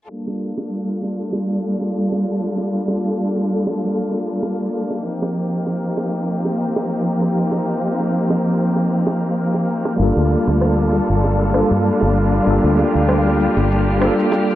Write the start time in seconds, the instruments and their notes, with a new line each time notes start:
0.09 string section G3 A#3 D4 F4 A4, synth texture F6, shaker
0.27 high bongo
0.58 high bongo
1.03 high bongo
1.33 high bongo
1.81 high bongo
2.12 high bongo
2.27 shaker
2.58 high bongo
2.88 high bongo, shaker
3.19 shaker
3.36 high bongo
3.50 shaker
3.67 high bongo
3.81 shaker
4.12 high bongo, shaker
4.29 shaker
4.43 high bongo, shaker
4.60 shaker
4.74 shaker
4.90 high bongo, shaker
5.04 string section F3 C4 D#4 G4, shaker
5.22 high bongo
5.36 shaker
5.53 shaker
5.67 high bongo, shaker
5.84 shaker
5.97 high bongo, shaker
6.15 shaker
6.29 shaker
6.45 high bongo
6.60 shaker
6.76 high bongo, shaker
6.91 shaker
7.08 shaker
7.21 high bongo, shaker
7.39 shaker
7.52 high bongo, shaker
7.84 shaker
8.00 high bongo, shaker
8.15 shaker
8.30 high bongo, shaker
8.45 shaker
8.62 shaker
8.76 high bongo, shaker
8.93 shaker
9.07 high bongo, shaker
9.24 shaker
9.38 shaker
9.54 high bongo, shaker
9.69 shaker
9.85 high bongo, shaker
9.96 fingered electric bass G1, tine electric piano G3 A#3 D4, string section D4 F4
10.00 string section G3 A4, tine electric piano F4 A4, shaker
10.17 fingered electric bass D2, high bongo
10.31 shaker
10.48 fingered electric bass D2, high bongo, shaker
10.61 cross-stick, shaker
10.79 shaker
10.92 high bongo, shaker
11.10 fingered electric bass G1, shaker
11.23 high bongo, shaker
11.51 tine electric piano G3 A#3 D4, cross-stick, shaker
11.56 tine electric piano F4 A4
11.71 fingered electric bass G2, high bongo, shaker
11.85 shaker
12.01 fingered electric bass G1, high bongo, shaker
12.16 shaker
12.33 shaker
12.43 fingered electric bass G1, tine electric piano G3 A#3 D4, string section G4
12.47 tine electric piano F4 A4, high bongo, shaker
12.64 fingered electric bass D2
12.78 high bongo, shaker
12.95 fingered electric bass D2, shaker
13.09 cross-stick, shaker
13.26 high bongo, shaker
13.40 shaker
13.57 fingered electric bass G1, high bongo, shaker
13.71 shaker
13.98 tine electric piano G3 A#3 D4, cross-stick
14.02 tine electric piano F4 A4, high bongo, shaker
14.19 shaker
14.32 high bongo, shaker
14.50 shaker